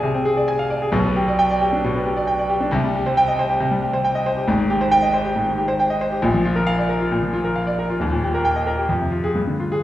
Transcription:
grand piano
Already playing: C2 C3 C4 G#4 D5 F5 G#5
0.03 C3
0.14 C4
0.25 G#4
0.37 D5
0.48 G#5
0.59 F5
0.70 D5
0.82 G#4
0.92 B1 B2
1.05 B3
1.16 G4
1.28 D5
1.39 G5
1.50 D5
1.61 G4
1.73 D4
1.84 B2
1.95 B3
2.06 G4
2.17 D5
2.27 G5
2.39 D5
2.50 G4
2.61 D4
2.71 C2 C3
2.84 G3
2.95 G4
3.06 C5
3.17 G5
3.28 D#5
3.39 C5
3.49 G4
3.60 C3
3.71 G3
3.82 G4
3.93 C5
4.04 G5
4.15 D#5
4.26 C5
4.37 G4
4.48 G#1 G#2
4.60 D#3
4.70 G4
4.81 C5
4.91 G5
5.02 D#5
5.13 C5
5.25 G4
5.36 G#2
5.47 D#3
5.57 G4
5.68 C5
5.79 G5
5.90 D#5
6.01 C5
6.12 G4
6.22 A#1 A#2
6.34 F3
6.45 F4
6.56 A#4
6.67 F5
6.78 D5
6.89 A#4
7.00 F4
7.11 A#2
7.22 F3
7.33 F4
7.44 A#4
7.56 F5
7.67 D5
7.79 A#4
7.90 F4
8.00 D#1 D#2
8.12 A#2
8.23 G4
8.34 A#4
8.45 G5
8.56 D#5
8.67 A#4
8.78 G4
8.89 F2
9.00 C3
9.12 F4
9.24 G#4
9.35 G2
9.47 D3
9.60 F4
9.72 G#4

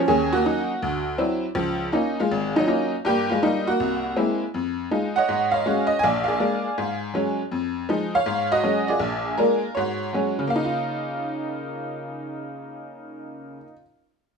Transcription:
honky-tonk piano
0.08 D#2 C#4 G#4
0.33 A#3 F#4
0.44 F#3 C#4 D#4
0.82 D2
1.18 F#3 C4 D4 E4
1.55 C#2 F3
1.92 A#3 C#4 D#4 F4
2.20 G#3 F4
2.31 G#1
2.56 F#3 D#4
2.68 A#3 C#4 D#4 F4
3.05 G2 A#3 G4
3.30 G#3 F4
3.42 G3 A#3 D#4 F4
3.67 A#3 F#4
3.80 C2
4.16 G#3 A#3 C4 E4
4.54 F2
4.91 G#3 D#4 F4
5.16 C#5 D#5 F#5
5.29 G#2
5.51 C#5 F5
5.66 G#3 C#4 F#4
5.87 D#5
5.99 G#5
6.03 A#1 D5 F5
6.24 F5
6.28 G#4 D5
6.40 G#3 A#3 D4
6.78 G#2
7.14 F#3 G#3 C#4
7.52 F2
7.89 F3 G#3 D#4
8.15 C#5 F5
8.26 G#2
8.52 F#4 D#5
8.63 F#3 G#3 C#4
8.88 F4 G#4 D5
8.99 A#1
9.37 G#3 A#3 D4 F4 A#4
9.75 G#2 F#4 C#5
10.13 F#3 G#3 C#4
10.39 C#3
10.47 A#3 F5
10.56 D#4
10.64 F4

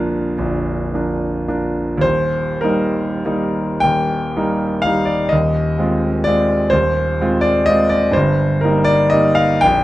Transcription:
grand piano
Already playing: A#0 A#1 F3 A#3 D4 F5
0.38 A#0 A#1
0.94 F3 A#3 D4
1.48 F3 A#3 D4
1.98 D#1 D#2 C5
2.61 G3 A#3 D#4 A#4
3.25 G3 A#3 D#4
3.80 D#1 D#2 G5
4.36 G3 A#3 D#4
4.82 G3 A#3 F5
4.86 D#4
5.05 D5
5.29 D#1 D#2 D#5
5.79 G#3 C4 F4
6.24 G#3 C4 F4 D5
6.70 D#1 D#2 C5
7.21 G#3 C4 F4
7.41 D5
7.66 G#3 C4 F4 D#5
7.89 D5
8.11 G2 C5
8.17 G1
8.61 G3 A#3 D#4 A#4
8.85 D5
9.10 G3 A#3 D#5
9.14 D#4
9.35 F5
9.61 A#0 A#1 G5

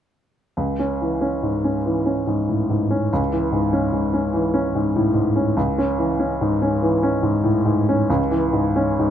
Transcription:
grand piano
0.57 C#2
0.79 C#4
1.01 E3
1.21 C#4
1.43 G#2
1.64 C#4
1.86 E3
2.06 C#4
2.27 G#2
2.49 A2
2.70 G#2
2.91 C#4
3.13 C#2
3.33 E3
3.52 G#2
3.73 C#4
3.92 G#2
4.14 C#4
4.34 E3
4.54 C#4
4.75 G#2
4.96 A2
5.14 G#2
5.36 C#4
5.57 C#2
5.78 C#4
5.98 E3
6.20 C#4
6.41 G#2
6.62 C#4
6.82 E3
7.03 C#4
7.23 G#2
7.44 A2
7.65 G#2
7.89 C#4
8.10 C#2
8.31 E3
8.53 G#2
8.76 C#4
8.99 G#2

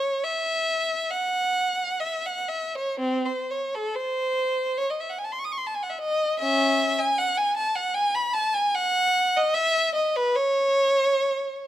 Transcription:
violin
Already playing: C#5
0.24 E5
1.10 F#5
2.00 E5
2.26 F#5
2.48 E5
2.75 C#5
3.00 C4
3.25 C5
3.51 C#5
3.75 A4
3.95 C5
4.78 C#5
4.90 D#5
5.01 E5
5.10 F#5
5.19 G#5
5.24 A5
5.32 C6
5.39 C#6
5.44 D#6
5.52 C#6
5.58 C6
5.67 A5
5.74 G#5
5.83 F#5
5.90 E5
5.98 D#5
6.39 C#4 E5
6.98 G#5
7.18 F#5
7.37 G#5
7.57 A5
7.76 F#5
7.94 G#5
8.15 B5
8.33 A5
8.54 G#5
8.75 F#5
9.37 D#5
9.54 E5
9.95 D#5
10.16 B4
10.36 C#5

